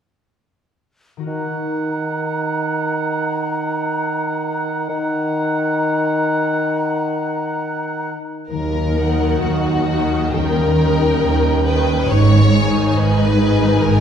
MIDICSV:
0, 0, Header, 1, 11, 480
1, 0, Start_track
1, 0, Key_signature, -6, "minor"
1, 0, Tempo, 920245
1, 665, Time_signature, 4, 2, 24, 8
1, 2095, Tempo, 883652
1, 4015, Tempo, 952381
1, 4495, Tempo, 913242
1, 5455, Tempo, 878477
1, 7462, End_track
2, 0, Start_track
2, 0, Title_t, "Flute"
2, 0, Program_c, 0, 73
2, 665, Note_on_c, 0, 82, 39
2, 2549, Note_off_c, 0, 82, 0
2, 2577, Note_on_c, 0, 82, 46
2, 4311, Note_off_c, 0, 82, 0
2, 7462, End_track
3, 0, Start_track
3, 0, Title_t, "Violin section"
3, 0, Program_c, 1, 48
3, 4745, Note_on_c, 1, 78, 40
3, 5210, Note_off_c, 1, 78, 0
3, 5225, Note_on_c, 1, 78, 37
3, 5455, Note_on_c, 1, 79, 39
3, 5456, Note_off_c, 1, 78, 0
3, 5692, Note_off_c, 1, 79, 0
3, 5699, Note_on_c, 1, 79, 42
3, 6169, Note_off_c, 1, 79, 0
3, 6187, Note_on_c, 1, 79, 41
3, 6420, Note_off_c, 1, 79, 0
3, 6671, Note_on_c, 1, 80, 43
3, 7135, Note_off_c, 1, 80, 0
3, 7144, Note_on_c, 1, 80, 46
3, 7462, Note_off_c, 1, 80, 0
3, 7462, End_track
4, 0, Start_track
4, 0, Title_t, "Oboe"
4, 0, Program_c, 2, 68
4, 662, Note_on_c, 2, 78, 37
4, 2547, Note_off_c, 2, 78, 0
4, 2567, Note_on_c, 2, 78, 49
4, 4306, Note_off_c, 2, 78, 0
4, 7462, End_track
5, 0, Start_track
5, 0, Title_t, "Violin section"
5, 0, Program_c, 3, 48
5, 4488, Note_on_c, 3, 70, 61
5, 4951, Note_off_c, 3, 70, 0
5, 4975, Note_on_c, 3, 66, 64
5, 5455, Note_off_c, 3, 66, 0
5, 5457, Note_on_c, 3, 70, 71
5, 6176, Note_on_c, 3, 71, 68
5, 6180, Note_off_c, 3, 70, 0
5, 6414, Note_off_c, 3, 71, 0
5, 6418, Note_on_c, 3, 73, 80
5, 6857, Note_off_c, 3, 73, 0
5, 6864, Note_on_c, 3, 73, 48
5, 6899, Note_on_c, 3, 71, 74
5, 6901, Note_off_c, 3, 73, 0
5, 7374, Note_off_c, 3, 71, 0
5, 7375, Note_on_c, 3, 70, 77
5, 7462, Note_off_c, 3, 70, 0
5, 7462, End_track
6, 0, Start_track
6, 0, Title_t, "Harp"
6, 0, Program_c, 4, 46
6, 610, Note_on_c, 4, 51, 30
6, 617, Note_on_c, 4, 63, 25
6, 625, Note_on_c, 4, 66, 26
6, 637, Note_on_c, 4, 70, 25
6, 2667, Note_off_c, 4, 51, 0
6, 2675, Note_off_c, 4, 63, 0
6, 2682, Note_off_c, 4, 66, 0
6, 2695, Note_off_c, 4, 70, 0
6, 4493, Note_on_c, 4, 51, 40
6, 4614, Note_on_c, 4, 58, 32
6, 4739, Note_on_c, 4, 63, 34
6, 4854, Note_on_c, 4, 66, 37
6, 4973, Note_on_c, 4, 70, 37
6, 5092, Note_on_c, 4, 75, 34
6, 5204, Note_off_c, 4, 70, 0
6, 5210, Note_on_c, 4, 70, 35
6, 5326, Note_off_c, 4, 66, 0
6, 5332, Note_on_c, 4, 66, 34
6, 5445, Note_off_c, 4, 51, 0
6, 5452, Note_on_c, 4, 51, 49
6, 5474, Note_off_c, 4, 66, 0
6, 5567, Note_off_c, 4, 58, 0
6, 5573, Note_on_c, 4, 58, 38
6, 5688, Note_off_c, 4, 63, 0
6, 5695, Note_on_c, 4, 63, 37
6, 5814, Note_on_c, 4, 67, 39
6, 5930, Note_on_c, 4, 73, 38
6, 6044, Note_off_c, 4, 75, 0
6, 6051, Note_on_c, 4, 75, 39
6, 6164, Note_off_c, 4, 73, 0
6, 6171, Note_on_c, 4, 73, 39
6, 6285, Note_off_c, 4, 67, 0
6, 6291, Note_on_c, 4, 67, 39
6, 6411, Note_on_c, 4, 44, 43
6, 6436, Note_off_c, 4, 67, 0
6, 6436, Note_off_c, 4, 73, 0
6, 6437, Note_off_c, 4, 58, 0
6, 6437, Note_off_c, 4, 70, 0
6, 6438, Note_off_c, 4, 51, 0
6, 6533, Note_on_c, 4, 51, 35
6, 6651, Note_off_c, 4, 63, 0
6, 6657, Note_on_c, 4, 63, 36
6, 6776, Note_on_c, 4, 68, 45
6, 6893, Note_on_c, 4, 71, 44
6, 7007, Note_off_c, 4, 75, 0
6, 7014, Note_on_c, 4, 75, 41
6, 7128, Note_off_c, 4, 71, 0
6, 7134, Note_on_c, 4, 71, 38
6, 7248, Note_off_c, 4, 68, 0
6, 7254, Note_on_c, 4, 68, 38
6, 7365, Note_off_c, 4, 44, 0
6, 7372, Note_on_c, 4, 44, 47
6, 7462, Note_off_c, 4, 44, 0
6, 7462, Note_off_c, 4, 51, 0
6, 7462, Note_off_c, 4, 63, 0
6, 7462, Note_off_c, 4, 68, 0
6, 7462, Note_off_c, 4, 71, 0
6, 7462, Note_off_c, 4, 75, 0
6, 7462, End_track
7, 0, Start_track
7, 0, Title_t, "French horn section"
7, 0, Program_c, 5, 60
7, 4493, Note_on_c, 5, 54, 37
7, 4495, Note_on_c, 5, 63, 40
7, 4953, Note_off_c, 5, 54, 0
7, 4953, Note_off_c, 5, 63, 0
7, 4959, Note_on_c, 5, 63, 41
7, 4964, Note_on_c, 5, 54, 44
7, 5438, Note_off_c, 5, 63, 0
7, 5440, Note_off_c, 5, 54, 0
7, 5457, Note_on_c, 5, 61, 52
7, 5462, Note_on_c, 5, 55, 51
7, 6418, Note_on_c, 5, 56, 44
7, 6418, Note_on_c, 5, 63, 47
7, 6422, Note_off_c, 5, 61, 0
7, 6424, Note_off_c, 5, 55, 0
7, 6888, Note_off_c, 5, 63, 0
7, 6889, Note_off_c, 5, 56, 0
7, 6895, Note_on_c, 5, 63, 52
7, 6896, Note_on_c, 5, 56, 54
7, 7462, Note_off_c, 5, 56, 0
7, 7462, Note_off_c, 5, 63, 0
7, 7462, End_track
8, 0, Start_track
8, 0, Title_t, "Viola section"
8, 0, Program_c, 6, 48
8, 4741, Note_on_c, 6, 63, 39
8, 4742, Note_on_c, 6, 51, 41
8, 5209, Note_off_c, 6, 51, 0
8, 5209, Note_off_c, 6, 63, 0
8, 5223, Note_on_c, 6, 51, 41
8, 5223, Note_on_c, 6, 63, 40
8, 5452, Note_off_c, 6, 63, 0
8, 5454, Note_off_c, 6, 51, 0
8, 5458, Note_on_c, 6, 63, 41
8, 5460, Note_on_c, 6, 51, 38
8, 5695, Note_off_c, 6, 51, 0
8, 5697, Note_off_c, 6, 63, 0
8, 5702, Note_on_c, 6, 51, 40
8, 5703, Note_on_c, 6, 63, 43
8, 6171, Note_off_c, 6, 51, 0
8, 6171, Note_off_c, 6, 63, 0
8, 6186, Note_on_c, 6, 51, 43
8, 6187, Note_on_c, 6, 63, 45
8, 6419, Note_off_c, 6, 51, 0
8, 6420, Note_off_c, 6, 63, 0
8, 6671, Note_on_c, 6, 63, 46
8, 6673, Note_on_c, 6, 51, 47
8, 7128, Note_off_c, 6, 51, 0
8, 7130, Note_off_c, 6, 63, 0
8, 7135, Note_on_c, 6, 51, 51
8, 7137, Note_on_c, 6, 63, 51
8, 7462, Note_off_c, 6, 51, 0
8, 7462, Note_off_c, 6, 63, 0
8, 7462, End_track
9, 0, Start_track
9, 0, Title_t, "Bassoon"
9, 0, Program_c, 7, 70
9, 661, Note_on_c, 7, 51, 47
9, 2547, Note_off_c, 7, 51, 0
9, 2571, Note_on_c, 7, 51, 59
9, 4308, Note_off_c, 7, 51, 0
9, 7462, End_track
10, 0, Start_track
10, 0, Title_t, "Cello section"
10, 0, Program_c, 8, 48
10, 4500, Note_on_c, 8, 39, 49
10, 4922, Note_off_c, 8, 39, 0
10, 4977, Note_on_c, 8, 39, 52
10, 5400, Note_off_c, 8, 39, 0
10, 5461, Note_on_c, 8, 39, 55
10, 5887, Note_off_c, 8, 39, 0
10, 5949, Note_on_c, 8, 39, 44
10, 6368, Note_off_c, 8, 39, 0
10, 6426, Note_on_c, 8, 44, 57
10, 6848, Note_off_c, 8, 44, 0
10, 6907, Note_on_c, 8, 44, 56
10, 7323, Note_off_c, 8, 44, 0
10, 7382, Note_on_c, 8, 44, 54
10, 7462, Note_off_c, 8, 44, 0
10, 7462, End_track
11, 0, Start_track
11, 0, Title_t, "Double bass section"
11, 0, Program_c, 10, 48
11, 4496, Note_on_c, 10, 39, 49
11, 4919, Note_off_c, 10, 39, 0
11, 4971, Note_on_c, 10, 39, 50
11, 5397, Note_off_c, 10, 39, 0
11, 5455, Note_on_c, 10, 39, 51
11, 5884, Note_off_c, 10, 39, 0
11, 5943, Note_on_c, 10, 39, 53
11, 6365, Note_off_c, 10, 39, 0
11, 6422, Note_on_c, 10, 32, 54
11, 6846, Note_off_c, 10, 32, 0
11, 6903, Note_on_c, 10, 32, 60
11, 7321, Note_off_c, 10, 32, 0
11, 7373, Note_on_c, 10, 32, 61
11, 7462, Note_off_c, 10, 32, 0
11, 7462, End_track
0, 0, End_of_file